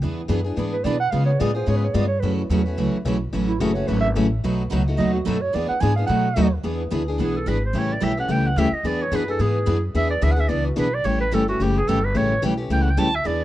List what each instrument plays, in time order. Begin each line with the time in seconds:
0.02 upright bass E2, steel-string acoustic guitar E3 B3 D4 G#4 B4
0.28 upright bass F#2, steel-string acoustic guitar E3 B3 D4 G#4 B4
0.44 steel-string acoustic guitar B3 D4 G#4
0.56 upright bass G#2, steel-string acoustic guitar E3 B3 D4 G#4 B4
0.73 clarinet B4
0.84 upright bass B2, steel-string acoustic guitar E3 B3 D4 G#4 B4, clarinet D5
1.00 clarinet F#5
1.11 steel-string acoustic guitar C#3 G#3 B3 F4 G#4, upright bass C#3, clarinet F5
1.26 clarinet C#5
1.40 upright bass A2, steel-string acoustic guitar C#3 G#3 B3 F4 G#4, clarinet D5
1.55 steel-string acoustic guitar B3 F4 G#4, clarinet C5
1.67 upright bass G#2, steel-string acoustic guitar C#3 G#3 B3 F4 G#4, clarinet C#5
1.77 clarinet B4
1.84 clarinet C#5
1.94 upright bass G2, steel-string acoustic guitar C#3 G#3 B3 F4 G#4, clarinet D5
2.08 clarinet C#5
2.20 upright bass F#2, steel-string acoustic guitar C#3 E3 F#3 A3 C#4 E4 F#4 A4, clarinet B4
2.35 clarinet E4
2.49 upright bass E2, steel-string acoustic guitar C#3 E3 F#3 A3 C#4 E4 F#4 A4, clarinet G#4
2.63 steel-string acoustic guitar C#4 F#4, clarinet B4
2.68 steel-string acoustic guitar A3
2.78 upright bass C#2, steel-string acoustic guitar C#3 E3 F#3 A3 C#4 E4 F#4 A4
2.94 muted upright bass stroke
3.05 upright bass B1, steel-string acoustic guitar C#3 E3 F#3 A3 C#4 E4 F#4 A4
3.33 upright bass A1, steel-string acoustic guitar C#3 E3 F#3 A3 C#4 E4 F#4 A4
3.47 clarinet E4
3.60 upright bass F#1, steel-string acoustic guitar C#3 E3 F#3 A3 C#4 E4 F#4 A4, clarinet G#4
3.74 steel-string acoustic guitar A3 C#4 F#4, clarinet C#5
3.87 upright bass G#1, steel-string acoustic guitar C#3 E3 F#3 A3 C#4 E4 F#4 A4, clarinet B4
4.01 clarinet E5
4.15 upright bass A1, steel-string acoustic guitar C#3 E3 F#3 A3 C#4 E4 F#4 A4
4.44 upright bass B1, steel-string acoustic guitar B2 F#3 A3 D#4 F#4 B4
4.71 upright bass C#2, steel-string acoustic guitar B2 F#3 A3 D#4 F#4 B4
4.88 steel-string acoustic guitar A3 D#4 F#4
4.98 upright bass D#2, steel-string acoustic guitar B2 F#3 A3 D#4 F#4 B4, clarinet D#5
5.13 clarinet F#4
5.26 upright bass F#2, steel-string acoustic guitar B2 F#3 A3 D#4 F#4 B4, clarinet A4
5.41 clarinet C#5
5.54 upright bass E2, steel-string acoustic guitar E3 B3 D4 G#4 B4, clarinet D5
5.69 clarinet F#5, muted upright bass stroke
5.81 upright bass G#2, steel-string acoustic guitar E3 B3 D4 G#4 B4, clarinet G#5
5.96 steel-string acoustic guitar B3 D4 G#4, clarinet F5
6.07 upright bass B2, steel-string acoustic guitar B2 F#3 A3 D#4 F#4 B4, clarinet F#5
6.36 upright bass D#2, steel-string acoustic guitar B2 F#3 A3 D#4 F#4 B4
6.64 upright bass E2, steel-string acoustic guitar E3 B3 D4 G#4 B4
6.91 upright bass D2, steel-string acoustic guitar E3 B3 D4 G#4 B4
7.08 steel-string acoustic guitar B3 D4 G#4
7.19 upright bass B1, steel-string acoustic guitar E3 B3 D4 G#4 B4, clarinet G#4
7.37 clarinet A4
7.46 upright bass G#1, steel-string acoustic guitar E3 B3 D4 G#4 B4, clarinet B4
7.65 clarinet C5
7.73 upright bass A1, steel-string acoustic guitar C#3 E3 G3 A3 C#4 E4 G4 A4
7.78 clarinet C#5
7.92 clarinet D5
8.01 upright bass B1, steel-string acoustic guitar C#3 E3 G3 A3 C#4 E4 G4 A4, clarinet E5
8.17 steel-string acoustic guitar A3 C#4 G4, clarinet F#5
8.28 upright bass C#2, steel-string acoustic guitar C#3 E3 G3 A3 C#4 E4 G4 A4, clarinet G5
8.47 clarinet F#5
8.56 upright bass D2, steel-string acoustic guitar C#3 E3 G3 A3 C#4 E4 G4 A4, clarinet E5
8.72 clarinet D#5, muted upright bass stroke
8.83 upright bass E2, steel-string acoustic guitar E3 B3 D4 G#4 B4, clarinet D5
9.02 clarinet C#5
9.11 upright bass F#2, steel-string acoustic guitar E3 B3 D4 G#4 B4, clarinet B4
9.28 steel-string acoustic guitar B3 D4 G#4, clarinet A4
9.39 upright bass G#2, steel-string acoustic guitar E3 B3 D4 G#4 B4, clarinet G#4
9.66 upright bass F#2, steel-string acoustic guitar E3 B3 D4 G#4 B4
9.94 upright bass E2, steel-string acoustic guitar E3 B3 D4 G#4 B4, clarinet E5
10.10 clarinet D5
10.21 upright bass D2, steel-string acoustic guitar E3 B3 D4 G#4 B4, clarinet E5
10.31 clarinet F#5
10.36 steel-string acoustic guitar B3 D4 G#4, clarinet E5
10.48 upright bass C#2, steel-string acoustic guitar E3 B3 D4 G#4 B4, clarinet D5
10.67 clarinet F#4
10.76 upright bass B1, steel-string acoustic guitar E3 B3 D4 G#4 B4, clarinet B4
10.94 clarinet D5
11.04 upright bass A1, steel-string acoustic guitar C#3 E3 G3 A3 C#4 E4 G4 A4, clarinet C#5
11.21 clarinet B4
11.32 upright bass G1, steel-string acoustic guitar C#3 E3 G3 A3 C#4 E4 G4 A4, clarinet A4
11.48 steel-string acoustic guitar A3 C#4 G4, clarinet F#4
11.60 upright bass F#1, steel-string acoustic guitar C#3 E3 G3 A3 C#4 E4 G4 A4, clarinet G4
11.78 clarinet G#4
11.87 upright bass G1, steel-string acoustic guitar C#3 E3 G3 A3 C#4 E4 G4 A4, clarinet A4
12.04 clarinet B4
12.14 upright bass A1, steel-string acoustic guitar C#3 E3 G3 A3 C#4 E4 G4 A4, clarinet C#5
12.42 upright bass B1, steel-string acoustic guitar C#3 E3 G3 A3 C#4 E4 G4 A4
12.57 steel-string acoustic guitar A3 C#4 G4
12.70 upright bass C#2, steel-string acoustic guitar C#3 E3 G3 A3 C#4 E4 G4 A4, clarinet G5
12.82 clarinet F#5
12.90 clarinet G5
12.97 upright bass D2, steel-string acoustic guitar C#3 E3 G3 A3 C#4 E4 G4 A4, clarinet A5
13.15 clarinet E5
13.24 upright bass E2, steel-string acoustic guitar E3 B3 D4 G#4 B4, clarinet D5